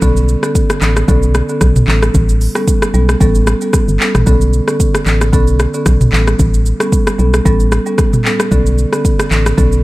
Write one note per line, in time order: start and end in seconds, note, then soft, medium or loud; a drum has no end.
0.02 0.36 B1 loud
0.02 0.40 D3 medium
0.02 0.40 B3 medium
0.02 0.40 C#4 medium
0.02 0.40 A4 loud
0.02 kick loud
0.02 shaker medium
0.17 shaker medium
0.29 shaker medium
0.43 0.62 D3 medium
0.43 0.63 B3 medium
0.43 0.63 C#4 medium
0.43 0.63 A4 medium
0.43 cross-stick medium
0.43 shaker soft
0.55 kick loud
0.55 shaker medium
0.70 cross-stick loud
0.70 shaker medium
0.82 1.04 A1 loud
0.82 1.02 D3 medium
0.82 1.02 B3 medium
0.82 1.03 C#4 medium
0.82 1.03 A4 medium
0.82 clap medium
0.82 shaker medium
0.97 cross-stick loud
0.97 shaker medium
1.08 1.42 B1 loud
1.08 1.29 D3 medium
1.08 1.29 B3 medium
1.08 1.29 C#4 medium
1.08 1.29 A4 loud
1.08 kick loud
1.08 shaker medium
1.23 shaker soft
1.35 cross-stick loud
1.35 shaker medium
1.49 1.85 D3 medium
1.49 1.85 B3 medium
1.49 1.85 C#4 medium
1.49 1.85 A4 medium
1.49 shaker soft
1.61 1.83 B1 medium
1.61 kick loud
1.61 cross-stick medium
1.61 shaker medium
1.76 mid tom loud
1.76 shaker medium
1.88 2.10 A1 loud
1.88 2.12 G3 medium
1.88 2.13 B3 medium
1.88 2.13 C#4 medium
1.88 2.13 A4 medium
1.88 clap loud
2.02 cross-stick loud
2.02 shaker soft
2.14 2.49 A1 loud
2.14 kick loud
2.14 shaker medium
2.29 shaker medium
2.41 open hi-hat medium
2.41 shaker medium
2.55 2.75 G3 medium
2.55 2.75 B3 medium
2.55 2.75 C#4 medium
2.55 2.75 A4 medium
2.55 cross-stick medium
2.55 shaker soft
2.68 kick loud
2.68 shaker medium
2.82 cross-stick loud
2.82 shaker medium
2.94 3.16 B1 loud
2.94 3.15 G3 medium
2.94 3.15 B3 medium
2.94 3.15 C#4 medium
2.94 3.15 A4 medium
2.94 shaker medium
3.09 cross-stick loud
3.09 shaker medium
3.20 3.55 A1 loud
3.20 3.41 G3 medium
3.20 3.41 B3 medium
3.20 3.41 C#4 medium
3.20 3.41 A4 loud
3.20 kick loud
3.20 shaker medium
3.35 shaker soft
3.47 cross-stick loud
3.47 shaker medium
3.61 3.97 G3 medium
3.61 3.97 B3 medium
3.61 3.98 C#4 medium
3.61 3.98 A4 medium
3.61 shaker soft
3.73 kick loud
3.73 cross-stick medium
3.73 shaker medium
3.88 3.98 G1 medium
3.88 shaker medium
4.00 4.25 G3 medium
4.00 4.25 B3 medium
4.00 4.25 C#4 medium
4.00 4.25 A4 medium
4.00 clap loud
4.15 4.25 A1 medium
4.15 cross-stick loud
4.15 mid tom loud
4.15 shaker soft
4.26 4.61 B1 loud
4.26 4.64 D3 medium
4.26 4.64 B3 medium
4.26 4.65 C#4 medium
4.26 4.65 A4 loud
4.26 kick loud
4.26 shaker medium
4.41 shaker medium
4.53 shaker soft
4.68 4.87 D3 medium
4.68 4.87 B3 medium
4.68 4.87 C#4 medium
4.68 4.87 A4 medium
4.68 cross-stick medium
4.68 shaker soft
4.80 kick loud
4.80 shaker medium
4.95 cross-stick loud
4.95 shaker medium
5.06 5.35 A1 medium
5.06 5.27 D3 medium
5.06 5.27 B3 medium
5.06 5.27 C#4 medium
5.06 5.27 A4 medium
5.06 clap medium
5.06 shaker medium
5.21 cross-stick loud
5.21 shaker medium
5.33 5.67 B1 loud
5.33 5.54 D3 medium
5.33 5.54 B3 medium
5.33 5.54 C#4 medium
5.33 5.54 A4 loud
5.33 kick loud
5.33 shaker medium
5.47 shaker soft
5.60 cross-stick loud
5.60 shaker medium
5.74 6.10 D3 medium
5.74 6.10 B3 medium
5.74 6.10 C#4 medium
5.74 6.10 A4 medium
5.74 shaker soft
5.86 6.08 B1 medium
5.86 kick loud
5.86 cross-stick loud
5.86 shaker medium
6.01 mid tom loud
6.01 shaker medium
6.12 6.35 A1 loud
6.12 6.37 G3 medium
6.12 6.37 B3 medium
6.12 6.37 C#4 medium
6.12 6.38 A4 medium
6.12 clap loud
6.27 cross-stick loud
6.27 shaker soft
6.39 6.73 A1 loud
6.39 kick loud
6.39 shaker medium
6.54 shaker medium
6.66 shaker medium
6.80 7.00 G3 medium
6.80 7.00 B3 medium
6.80 7.00 C#4 medium
6.80 7.00 A4 medium
6.80 cross-stick loud
6.80 shaker soft
6.92 kick loud
6.92 shaker medium
7.07 cross-stick loud
7.07 shaker medium
7.19 7.41 B1 medium
7.19 7.39 G3 medium
7.19 7.40 B3 medium
7.19 7.40 C#4 medium
7.19 7.40 A4 medium
7.19 shaker medium
7.34 cross-stick loud
7.34 shaker medium
7.45 7.80 A1 loud
7.45 7.66 G3 medium
7.45 7.66 B3 medium
7.45 7.66 C#4 medium
7.45 7.66 A4 loud
7.45 kick loud
7.45 shaker medium
7.60 shaker soft
7.72 cross-stick loud
7.72 shaker medium
7.86 8.22 G3 medium
7.86 8.22 B3 medium
7.86 8.22 C#4 medium
7.86 8.22 A4 medium
7.86 shaker soft
7.98 kick loud
7.98 cross-stick medium
7.98 shaker medium
8.13 mid tom loud
8.13 shaker medium
8.25 8.50 G3 medium
8.25 8.50 B3 medium
8.25 8.50 C#4 medium
8.25 8.50 A4 medium
8.25 clap loud
8.40 cross-stick loud
8.40 shaker soft
8.51 8.86 B1 loud
8.51 8.89 D3 medium
8.51 8.89 B3 medium
8.51 8.89 C#4 medium
8.51 8.89 A4 loud
8.51 kick loud
8.51 shaker medium
8.66 shaker medium
8.78 shaker medium
8.93 9.12 D3 medium
8.93 9.12 B3 medium
8.93 9.12 C#4 medium
8.93 9.12 A4 medium
8.93 cross-stick medium
8.93 shaker soft
9.05 kick loud
9.05 shaker medium
9.20 cross-stick loud
9.20 shaker medium
9.31 9.53 A1 medium
9.31 9.52 D3 medium
9.31 9.52 B3 medium
9.31 9.52 C#4 medium
9.31 9.52 A4 medium
9.31 clap medium
9.31 shaker medium
9.46 cross-stick loud
9.46 shaker medium
9.57 9.84 B1 loud
9.57 9.78 D3 medium
9.57 9.78 B3 medium
9.57 9.78 C#4 medium
9.57 9.78 A4 loud
9.57 kick loud
9.57 shaker medium
9.72 shaker medium